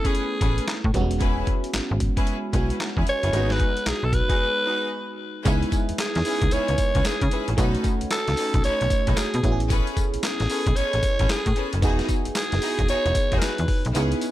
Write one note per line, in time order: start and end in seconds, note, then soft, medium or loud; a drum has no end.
0.00 0.90 A3 medium
0.00 0.91 B3 medium
0.00 0.91 C#4 medium
0.00 0.91 E4 medium
0.04 0.21 C#4 medium
0.04 0.21 G#4 medium
0.04 0.85 G#4 medium
0.04 0.21 A4 medium
0.04 0.21 B4 medium
0.04 kick loud
0.04 closed hi-hat medium
0.15 closed hi-hat medium
0.41 0.60 A1 medium
0.41 0.61 C#4 medium
0.41 0.62 G#4 medium
0.41 0.62 A4 medium
0.41 0.62 B4 medium
0.41 kick loud
0.41 closed hi-hat medium
0.58 closed hi-hat medium
0.68 snare loud
0.68 clap medium
0.68 closed hi-hat medium
0.84 0.91 A2 loud
0.84 kick medium
0.94 1.44 E1 loud
0.94 1.02 G3 medium
0.94 2.51 B3 medium
0.94 2.51 C#4 medium
0.94 2.52 F#4 medium
0.94 kick medium
0.94 closed hi-hat medium
1.01 2.53 G#3 medium
1.11 closed hi-hat medium
1.20 1.45 C#4 medium
1.20 1.46 E4 medium
1.20 1.46 G#4 medium
1.20 1.46 B4 loud
1.20 kick loud
1.20 closed hi-hat medium
1.47 kick medium
1.47 closed hi-hat medium
1.64 closed hi-hat medium
1.73 1.81 G#1 soft
1.73 snare loud
1.73 clap loud
1.73 closed hi-hat medium
1.91 2.10 G#1 loud
2.00 kick medium
2.00 closed hi-hat medium
2.17 2.33 C#4 medium
2.17 2.33 E4 medium
2.17 2.33 G#4 medium
2.17 2.33 B4 loud
2.17 kick loud
2.17 closed hi-hat medium
2.27 closed hi-hat medium
2.53 2.72 B1 medium
2.53 3.31 G#3 medium
2.53 3.33 B3 medium
2.53 2.74 C#4 medium
2.53 3.34 C#4 medium
2.53 2.74 E4 medium
2.53 3.34 F#4 medium
2.53 2.74 G#4 medium
2.53 2.74 B4 medium
2.53 kick medium
2.53 closed hi-hat medium
2.70 closed hi-hat medium
2.80 snare loud
2.80 clap medium
2.80 closed hi-hat medium
2.97 3.04 E2 medium
2.97 3.13 C#4 medium
2.97 3.13 E4 medium
2.97 3.13 G#4 medium
2.97 3.13 B4 medium
2.97 kick medium
3.07 3.53 C#5 loud
3.07 closed hi-hat medium
3.22 3.30 F#1 loud
3.22 3.39 C#4 medium
3.22 3.39 E4 medium
3.22 3.31 G#4 medium
3.22 3.31 B4 medium
3.22 closed hi-hat medium
3.32 3.64 G#1 loud
3.32 5.41 G#3 medium
3.32 3.41 A#3 soft
3.32 3.57 D#4 medium
3.32 5.42 D#4 medium
3.32 3.57 F#4 medium
3.32 5.42 F#4 medium
3.32 3.58 G#4 medium
3.32 3.58 B4 loud
3.32 closed hi-hat medium
3.40 5.45 B3 medium
3.50 3.89 B4 loud
3.50 snare medium
3.60 kick medium
3.60 closed hi-hat soft
3.77 closed hi-hat medium
3.86 3.93 B1 soft
3.86 4.06 G#4 medium
3.86 snare loud
3.86 clap medium
3.86 closed hi-hat medium
4.03 4.22 B1 medium
4.03 4.15 A4 medium
4.13 5.20 B4 loud
4.13 kick loud
4.13 closed hi-hat medium
4.29 4.45 D#4 medium
4.29 4.45 F#4 medium
4.29 4.45 G#4 medium
4.29 4.45 B4 medium
4.29 kick loud
4.29 closed hi-hat medium
4.65 4.86 D#4 medium
4.65 4.86 F#4 medium
4.65 4.86 G#4 medium
4.65 4.86 B4 medium
5.45 5.64 C#2 loud
5.45 7.54 G#3 medium
5.45 7.54 B3 medium
5.45 5.70 C#4 medium
5.45 7.54 D#4 medium
5.45 5.70 E4 medium
5.45 7.55 E4 medium
5.45 5.70 G#4 medium
5.45 5.70 B4 loud
5.45 kick loud
5.45 closed hi-hat medium
5.45 tambourine medium
5.62 closed hi-hat soft
5.72 kick medium
5.72 closed hi-hat medium
5.72 tambourine medium
5.89 5.93 E2 soft
5.89 closed hi-hat medium
5.98 6.54 G#4 loud
5.98 snare loud
5.98 clap loud
5.98 closed hi-hat medium
5.98 tambourine loud
6.15 6.23 E2 loud
6.15 snare medium
6.15 closed hi-hat soft
6.25 6.45 C#4 medium
6.25 6.45 E4 medium
6.25 6.46 G#4 medium
6.25 6.46 B4 medium
6.25 open hi-hat medium
6.25 tambourine medium
6.42 6.49 C#2 medium
6.42 kick loud
6.42 closed hi-hat medium
6.51 6.59 C#2 soft
6.51 6.72 C#4 medium
6.51 6.72 E4 medium
6.51 6.72 G#4 medium
6.51 6.72 B4 medium
6.51 7.08 C#5 loud
6.51 closed hi-hat medium
6.51 tambourine medium
6.68 6.76 C#2 medium
6.68 closed hi-hat soft
6.78 kick medium
6.78 closed hi-hat medium
6.78 tambourine medium
6.95 7.02 C#2 medium
6.95 7.11 C#4 medium
6.95 7.11 E4 medium
6.95 7.11 G#4 medium
6.95 7.11 B4 medium
6.95 kick loud
6.95 closed hi-hat medium
7.05 7.49 G#4 medium
7.05 snare loud
7.05 clap medium
7.05 closed hi-hat medium
7.05 tambourine medium
7.21 7.29 C#3 loud
7.21 kick medium
7.21 closed hi-hat medium
7.31 7.52 C#4 medium
7.31 7.52 E4 medium
7.31 7.52 G#4 medium
7.31 7.52 B4 medium
7.31 closed hi-hat medium
7.48 7.55 A1 medium
7.48 closed hi-hat medium
7.57 7.77 B1 loud
7.57 9.39 A3 medium
7.57 7.83 C#4 medium
7.57 9.40 C#4 medium
7.57 7.83 D#4 medium
7.57 9.40 D#4 medium
7.57 9.41 F#4 medium
7.57 7.83 A4 medium
7.57 7.83 B4 loud
7.57 kick loud
7.57 closed hi-hat medium
7.57 tambourine medium
7.75 closed hi-hat medium
7.84 kick medium
7.84 closed hi-hat medium
7.84 tambourine medium
8.01 8.06 C#2 soft
8.01 closed hi-hat medium
8.11 8.61 A4 loud
8.11 snare loud
8.11 clap loud
8.11 closed hi-hat medium
8.11 tambourine medium
8.27 8.35 C#2 medium
8.27 snare medium
8.27 closed hi-hat soft
8.37 8.58 C#4 medium
8.37 8.58 D#4 medium
8.37 8.58 A4 medium
8.37 8.58 B4 medium
8.37 open hi-hat medium
8.37 tambourine medium
8.54 8.61 B1 medium
8.54 kick loud
8.54 closed hi-hat medium
8.64 8.71 B1 soft
8.64 8.84 C#4 medium
8.64 8.84 D#4 medium
8.64 8.84 A4 medium
8.64 8.85 B4 medium
8.64 9.19 C#5 loud
8.64 closed hi-hat medium
8.64 tambourine medium
8.81 8.88 B1 medium
8.81 closed hi-hat soft
8.90 kick loud
8.90 closed hi-hat medium
8.90 tambourine medium
9.07 9.14 B1 loud
9.07 9.23 C#4 medium
9.07 9.23 D#4 medium
9.07 9.23 A4 medium
9.07 9.23 B4 medium
9.07 kick loud
9.07 closed hi-hat medium
9.17 9.61 G#4 medium
9.17 snare loud
9.17 clap medium
9.17 closed hi-hat medium
9.17 tambourine loud
9.34 9.41 B2 loud
9.34 closed hi-hat medium
9.43 9.81 A1 medium
9.43 11.52 B3 medium
9.43 11.52 C#4 medium
9.43 11.53 E4 medium
9.43 9.53 F#4 medium
9.43 kick medium
9.43 closed hi-hat medium
9.52 11.56 G#4 medium
9.60 closed hi-hat medium
9.69 9.95 C#4 medium
9.69 9.95 G#4 medium
9.69 9.95 A4 medium
9.69 9.95 B4 loud
9.69 kick loud
9.69 closed hi-hat medium
9.69 tambourine medium
9.87 closed hi-hat soft
9.97 kick medium
9.97 closed hi-hat medium
9.97 tambourine medium
10.14 10.18 A1 medium
10.14 closed hi-hat medium
10.23 10.78 G#4 medium
10.23 snare loud
10.23 clap loud
10.23 closed hi-hat medium
10.23 tambourine loud
10.40 10.47 A1 medium
10.40 snare medium
10.40 closed hi-hat soft
10.49 10.70 C#4 medium
10.49 10.70 G#4 medium
10.49 10.70 A4 medium
10.49 10.70 B4 medium
10.49 open hi-hat medium
10.49 tambourine medium
10.66 10.74 B1 medium
10.66 kick loud
10.66 closed hi-hat medium
10.76 10.84 A1 soft
10.76 10.97 C#4 medium
10.76 10.97 G#4 medium
10.76 10.97 A4 medium
10.76 10.97 B4 medium
10.76 11.32 C#5 loud
10.76 closed hi-hat medium
10.76 tambourine medium
10.93 11.01 A1 medium
10.93 closed hi-hat soft
11.03 kick medium
11.03 closed hi-hat medium
11.03 tambourine medium
11.19 11.27 A1 medium
11.19 11.36 C#4 medium
11.19 11.36 G#4 medium
11.19 11.36 A4 medium
11.19 11.36 B4 medium
11.19 kick loud
11.19 closed hi-hat medium
11.29 11.74 G#4 medium
11.29 snare loud
11.29 clap medium
11.29 closed hi-hat medium
11.29 tambourine medium
11.46 11.53 A2 medium
11.46 kick medium
11.46 closed hi-hat medium
11.56 11.76 C#4 medium
11.56 11.76 G#4 medium
11.56 11.77 A4 medium
11.56 11.77 B4 medium
11.56 closed hi-hat medium
11.73 11.84 F#1 medium
11.73 closed hi-hat medium
11.82 12.02 E1 loud
11.82 13.91 B3 medium
11.82 12.07 D#4 medium
11.82 13.91 D#4 medium
11.82 12.08 E4 medium
11.82 12.08 F#4 medium
11.82 13.92 F#4 medium
11.82 12.08 G#4 loud
11.82 13.92 G#4 loud
11.82 kick loud
11.82 closed hi-hat medium
11.82 tambourine medium
11.99 snare medium
11.99 closed hi-hat medium
12.09 kick medium
12.09 closed hi-hat medium
12.09 tambourine medium
12.25 12.30 F#1 soft
12.25 closed hi-hat medium
12.35 12.86 G#4 medium
12.35 snare loud
12.35 clap loud
12.35 closed hi-hat medium
12.35 tambourine loud
12.52 12.60 F#1 medium
12.52 snare medium
12.52 closed hi-hat soft
12.62 12.83 D#4 medium
12.62 12.83 E4 medium
12.62 12.83 F#4 medium
12.62 12.83 G#4 medium
12.62 open hi-hat medium
12.62 tambourine medium
12.79 12.86 E1 medium
12.79 kick loud
12.79 closed hi-hat medium
12.88 12.96 E1 soft
12.88 13.09 D#4 medium
12.88 13.09 E4 medium
12.88 13.09 F#4 medium
12.88 13.09 G#4 medium
12.88 13.39 C#5 loud
12.88 closed hi-hat medium
12.88 tambourine medium
13.06 13.13 E1 loud
13.06 closed hi-hat soft
13.15 kick medium
13.15 closed hi-hat medium
13.15 tambourine medium
13.32 13.39 E1 loud
13.32 13.48 D#4 medium
13.32 13.48 E4 medium
13.32 13.48 F#4 medium
13.32 13.48 G#4 medium
13.32 kick loud
13.32 closed hi-hat medium
13.38 13.45 A#4 medium
13.38 snare loud
13.38 closed hi-hat medium
13.38 tambourine medium
13.43 13.86 B4 medium
13.43 clap medium
13.58 13.66 E2 medium
13.58 closed hi-hat medium
13.68 kick loud
13.68 open hi-hat medium
13.85 13.93 B1 medium
13.85 closed hi-hat medium
13.94 14.14 C#2 loud
13.94 14.31 B3 medium
13.94 14.20 B3 medium
13.94 14.20 C#4 medium
13.94 14.31 D#4 medium
13.94 14.20 E4 medium
13.94 14.31 E4 medium
13.94 14.20 G#4 medium
13.94 14.31 G#4 medium
13.94 closed hi-hat medium
13.94 tambourine medium
14.12 closed hi-hat medium
14.21 closed hi-hat medium
14.21 tambourine medium